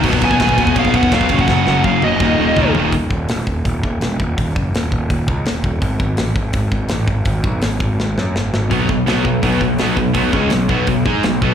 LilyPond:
<<
  \new Staff \with { instrumentName = "Lead electric guitar" } { \time 4/4 \key ces \lydian \tempo 4 = 166 r8 aes''4. f''8 fis''8 f''8. ges''16~ | ges''4 f''8 ees''2 r8 | r1 | r1 |
r1 | r1 | r1 | r1 | }
  \new Staff \with { instrumentName = "Distorted electric guitar" } { \clef bass \time 4/4 \key ces \lydian <b, fis b>8 <b, fis b>8 <b, fis b>8 <b, fis b>8 <b, fis b>8 <b, fis b>8 <b, fis b>8 <ges, des ges>8 | <ges, des ges>8 <ges, des ges>8 <ges, des ges>8 <ges, des ges>8 <ees, bes, ees>8 <ees, bes, ees>8 <ees, bes, ees>8 <ees, bes, ees>8 | r1 | r1 |
r1 | r1 | <b, fis b>8 <b, fis>8 <b, fis b>8 <b, fis>8 <b, fis b>8 <b, fis>8 <b, fis b>8 <b, fis>8 | <b, fis b>8 <des aes des'>8 <b, fis>8 <b, fis b>8 <b, fis>8 <aes ees' aes'>8 <b, fis>8 <b, fis b>8 | }
  \new Staff \with { instrumentName = "Distorted electric guitar" } { \clef bass \time 4/4 \key ces \lydian <b, fis b>8 <b, fis b>8 <b, fis b>8 <b, fis b>8 <b, fis b>8 <b, fis b>8 <b, fis b>8 <ges, des ges>8 | <ges, des ges>8 <ges, des ges>8 <ges, des ges>8 <ges, des ges>8 <ees, bes, ees>8 <ees, bes, ees>8 <ees, bes, ees>8 <ees, bes, ees>8 | r1 | r1 |
r1 | r1 | <b, fis b>8 <b, fis>8 <b, fis b>8 <b, fis>8 <b, fis b>8 <b, fis>8 <b, fis b>8 <b, fis>8 | <b, fis b>8 <des aes des'>8 <b, fis>8 <b, fis b>8 <b, fis>8 <aes ees' aes'>8 <b, fis>8 <b, fis b>8 | }
  \new Staff \with { instrumentName = "Picked electric bass" } { \clef bass \time 4/4 \key ces \lydian dis,,8 dis,,8 dis,,8 dis,,8 dis,,8 dis,,8 dis,,8 ges,,8 | ges,,8 ges,,8 ges,,8 ges,,8 ees,,8 ees,,8 des,8 ees,,8 | ees,,8 ees,,8 fes,,8 ees,,8 ees,,8 ees,,8 fes,,8 ees,,8 | ees,,8 ges,,8 ees,,8 ees,,8 ees,,8 des,8 ees,,8 ees,,8 |
aes,,8 aes,,8 a,,8 aes,,8 aes,,8 aes,,8 a,,8 aes,,8 | aes,,8 ces,8 aes,,8 aes,,8 aes,,8 ges,8 aes,,8 aes,,8 | b,,8 b,,8 b,,8 b,,8 b,,8 b,,8 b,,8 b,,8 | b,,8 des,8 b,,8 b,,8 b,,8 aes,8 b,,8 b,,8 | }
  \new DrumStaff \with { instrumentName = "Drums" } \drummode { \time 4/4 <cymc bd>16 bd16 <bd cymr>16 bd16 <bd cymr sn>16 bd16 <bd cymr>16 bd16 <bd cymr>16 bd16 <bd cymr>16 bd16 <bd cymr sn>16 bd16 <bd cymr>16 bd16 | <bd sn>8 sn8 bd8 tommh8 <bd toml>4 <bd tomfh>8 tomfh8 | <hho bd>8 bd8 <hho sn>8 bd8 <hho bd>8 bd8 <hho sn>8 bd8 | <hho bd>8 bd8 <hho sn>8 bd8 <hho bd>8 bd8 <hho sn>8 bd8 |
<hho bd>8 bd8 <hho sn>8 bd8 <hho bd>8 bd8 <hho sn>8 bd8 | <hho bd>8 bd8 <hho sn>8 bd8 sn8 sn8 sn8 sn8 | <hho bd>8 bd8 <hho sn>8 bd8 <hho bd>8 bd8 <hho sn>8 bd8 | <hho bd>8 bd8 <hho sn>8 bd8 <hho bd>8 bd8 <hho sn>8 bd8 | }
>>